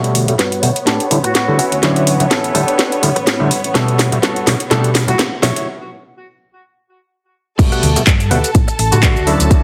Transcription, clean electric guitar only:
0.00 0.15 B3 medium
0.00 0.15 F#4 loud
0.00 0.15 A4 loud
0.39 0.63 B3 medium
0.39 0.63 F#4 medium
0.39 0.63 B4 medium
0.86 1.05 D4 medium
0.86 1.06 G4 medium
0.86 1.06 A4 medium
1.24 muted clean electric guitar stroke medium
1.35 muted clean electric guitar stroke soft
1.58 2.17 C#4 medium
1.58 2.17 E4 medium
1.58 2.18 F#4 loud
2.30 2.55 C#4 medium
2.30 2.55 E4 medium
2.30 2.54 A4 medium
2.55 3.03 D4 medium
2.55 3.03 G4 medium
2.55 3.03 A4 loud
3.16 muted clean electric guitar stroke medium
3.27 muted clean electric guitar stroke soft
3.75 3.99 B3 loud
3.75 3.99 F#4 loud
3.75 3.99 A4 loud
4.22 4.47 B3 medium
4.22 4.47 F#4 medium
4.22 4.47 A4 medium
4.71 4.90 D4 medium
4.71 4.90 G4 medium
4.71 4.90 A4 medium
5.08 muted clean electric guitar stroke medium
5.19 muted clean electric guitar stroke soft
5.42 5.67 E4 medium
5.42 5.67 F#4 medium
5.42 5.67 C#5 loud
7.59 muted clean electric guitar stroke loud
7.72 7.89 G4 medium
7.72 7.90 A4 medium
7.72 7.90 B4 medium
7.72 7.90 F#5 loud
8.07 muted clean electric guitar stroke soft
8.20 muted clean electric guitar stroke soft
8.31 8.50 G4 medium
8.31 8.50 A4 medium
8.31 8.50 B4 medium
8.31 8.50 F#5 medium
8.68 muted clean electric guitar stroke loud
8.79 muted clean electric guitar stroke soft
9.03 9.22 G4 medium
9.03 9.22 A4 medium
9.03 9.22 D5 medium
9.03 9.22 E5 loud
9.27 9.56 F#4 medium
9.27 9.56 C#5 medium
9.27 9.56 D5 medium
9.27 9.56 E5 loud

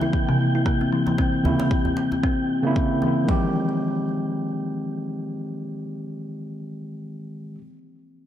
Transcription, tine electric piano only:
0.00 0.35 C#3 medium
0.00 0.36 A#3 medium
0.00 0.38 E4 medium
1.44 1.68 C#3 medium
1.44 1.68 A#3 medium
1.44 1.69 E4 medium
2.63 3.26 C#3 medium
2.63 3.27 A#3 medium
2.67 3.28 E4 medium
3.25 7.55 D#3 medium
3.25 7.58 G#3 medium
3.31 7.61 G4 medium

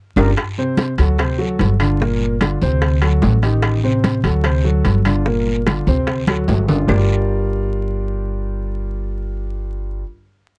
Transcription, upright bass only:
0.16 0.32 G1 medium
0.98 1.56 D2 medium
1.60 2.56 G1 medium
2.62 3.19 D2 loud
3.23 4.18 A1 medium
4.24 4.81 D2 medium
4.85 5.81 G1 medium
5.87 6.44 D2 medium
6.48 6.84 G1 medium
6.88 10.02 G1 medium

